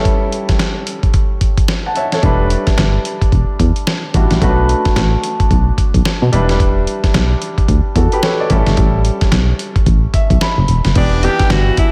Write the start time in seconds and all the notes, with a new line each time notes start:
Already playing: G3 C#4 E4 A4
0.05 kick, closed hi-hat
0.32 closed hi-hat
0.49 kick, snare, closed hi-hat
0.59 snare, closed hi-hat
0.87 closed hi-hat
1.03 kick, closed hi-hat
1.14 kick, closed hi-hat
1.41 kick, closed hi-hat
1.57 kick, closed hi-hat
1.68 snare, closed hi-hat
1.86 F#5 A5
1.96 C#5 E5, closed hi-hat
2.12 A4 C#5, snare, closed hi-hat
2.23 E1 G3 D4 E4 B4, kick, closed hi-hat
2.50 closed hi-hat
2.67 kick, snare, closed hi-hat
2.78 G1, snare, closed hi-hat
3.05 closed hi-hat
3.21 kick, closed hi-hat
3.32 E1, kick, closed hi-hat
3.60 E2, kick, closed hi-hat
3.76 closed hi-hat
3.87 snare, closed hi-hat
4.14 A1 G3 D4 E4 F#4, kick, closed hi-hat
4.31 A1, snare, closed hi-hat
4.41 B1 A3 C#4 F#4 B4, kick, closed hi-hat
4.49 D4
4.69 closed hi-hat
4.85 kick, snare, closed hi-hat
4.96 A1, snare, closed hi-hat
5.24 closed hi-hat
5.40 kick, closed hi-hat
5.51 B1, kick, closed hi-hat
5.78 kick, closed hi-hat
5.94 B1, kick, closed hi-hat
6.05 snare, closed hi-hat
6.22 B2
6.32 E1 G3 D4 E4 B4, closed hi-hat
6.49 snare, closed hi-hat
6.60 kick, closed hi-hat
6.87 closed hi-hat
7.04 kick, snare, closed hi-hat
7.14 B1, snare, closed hi-hat
7.42 closed hi-hat
7.58 kick, closed hi-hat
7.68 D2, kick, closed hi-hat
7.96 E2 F#4 A4, kick, closed hi-hat
8.12 G4 B4, closed hi-hat
8.23 A4 C#5, snare, closed hi-hat
8.40 B4 D5
8.50 A1 G3 C#4 E4 A4, kick, closed hi-hat
8.66 G1, snare, closed hi-hat
8.77 A1, kick, closed hi-hat
9.05 closed hi-hat
9.21 kick, snare, closed hi-hat
9.32 B1, snare, closed hi-hat
9.59 closed hi-hat
9.76 kick, closed hi-hat
9.86 A1, kick, closed hi-hat
10.14 E5, kick, closed hi-hat
10.30 B1, kick, closed hi-hat
10.41 B5, snare, closed hi-hat
10.58 F#1
10.68 E1, closed hi-hat
10.85 F#1, snare, closed hi-hat
10.95 E1 E3 B3 D4 G4, kick, closed hi-hat, crash
11.23 E3 B3 D4 G4, closed hi-hat
11.39 kick, snare, closed hi-hat
11.50 G1 F#4, snare, closed hi-hat
11.77 E4, kick, closed hi-hat